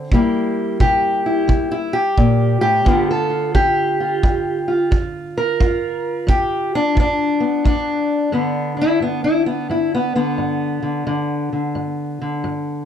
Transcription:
Already playing: steel-string acoustic guitar D3 C4
0.12 steel-string acoustic guitar C3 G3 A#3 E4 G4, kick
0.80 steel-string acoustic guitar C3 G4, kick
1.26 steel-string acoustic guitar E4
1.48 steel-string acoustic guitar C3, kick
1.71 steel-string acoustic guitar E4
1.93 steel-string acoustic guitar G4
2.18 steel-string acoustic guitar A#2, kick
2.61 steel-string acoustic guitar A2 G4
2.85 steel-string acoustic guitar G2 D3 B3 F4, kick
3.11 steel-string acoustic guitar A4
3.30 steel-string acoustic guitar F4
3.54 steel-string acoustic guitar G2 G4, kick
4.00 steel-string acoustic guitar F4
4.23 steel-string acoustic guitar G2, kick
4.68 steel-string acoustic guitar F4
4.91 steel-string acoustic guitar G2, kick
5.37 steel-string acoustic guitar A#4
5.60 steel-string acoustic guitar G2 F4, kick
6.27 steel-string acoustic guitar G2 G4, kick
6.75 steel-string acoustic guitar D4
6.95 steel-string acoustic guitar G2, kick
7.00 steel-string acoustic guitar D4
7.40 steel-string acoustic guitar B3
7.64 steel-string acoustic guitar G2 D4, kick
8.32 steel-string acoustic guitar G2 D3 B3 D4
8.77 steel-string acoustic guitar D4
8.81 steel-string acoustic guitar E4
9.00 steel-string acoustic guitar G2 B3
9.24 steel-string acoustic guitar E4
9.46 steel-string acoustic guitar B3
9.69 steel-string acoustic guitar G2 E4
9.95 steel-string acoustic guitar B3
10.15 steel-string acoustic guitar D3 B3
10.38 steel-string acoustic guitar G2
10.83 steel-string acoustic guitar D3
11.07 steel-string acoustic guitar G2 D3
11.53 steel-string acoustic guitar D3
11.75 steel-string acoustic guitar G2
12.21 steel-string acoustic guitar D3
12.44 steel-string acoustic guitar G2

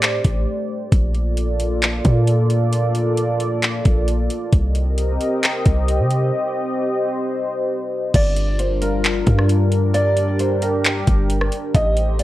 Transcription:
Already playing: 808-style bass A2, analog synth pad A3 G4 C5 D5
0.02 clap, closed hi-hat
0.24 808-style bass A1, kick, closed hi-hat
0.92 808-style bass A#1, analog synth pad A#3 F4 A4 D5, kick, closed hi-hat
1.14 closed hi-hat
1.37 closed hi-hat
1.60 closed hi-hat
1.82 clap, closed hi-hat
2.05 808-style bass A#2, kick, closed hi-hat
2.27 closed hi-hat
2.50 closed hi-hat
2.73 closed hi-hat
2.95 closed hi-hat
3.17 closed hi-hat
3.40 closed hi-hat
3.63 clap, closed hi-hat
3.85 808-style bass A#1, kick, closed hi-hat
4.08 closed hi-hat
4.30 closed hi-hat
4.53 808-style bass C2, analog synth pad C4 G4 A#4 D#5, kick, closed hi-hat
4.75 closed hi-hat
4.98 closed hi-hat
5.21 closed hi-hat
5.43 clap, closed hi-hat
5.66 808-style bass C2, kick, closed hi-hat
5.88 closed hi-hat
6.00 808-style bass C3
6.11 closed hi-hat
6.33 analog synth pad C5
8.14 808-style bass G1, analog synth pad G3 D4 F4 A#4, felt piano D5, kick, closed hi-hat, crash
8.36 closed hi-hat
8.59 felt piano C5, closed hi-hat
8.81 felt piano A#4, closed hi-hat
9.04 clap, closed hi-hat
9.27 808-style bass G2, kick, closed hi-hat
9.39 cross-stick
9.49 closed hi-hat
9.72 closed hi-hat
9.94 analog synth pad G4, felt piano D5, closed hi-hat
10.17 closed hi-hat
10.39 felt piano C5, closed hi-hat
10.62 felt piano A#4, closed hi-hat
10.84 clap, closed hi-hat
11.07 808-style bass G1, kick, closed hi-hat
11.30 closed hi-hat
11.41 cross-stick
11.52 closed hi-hat
11.75 808-style bass A1, analog synth pad A3 D#4 G4 C5, felt piano D#5, kick, closed hi-hat
11.97 closed hi-hat
12.19 felt piano D5, closed hi-hat

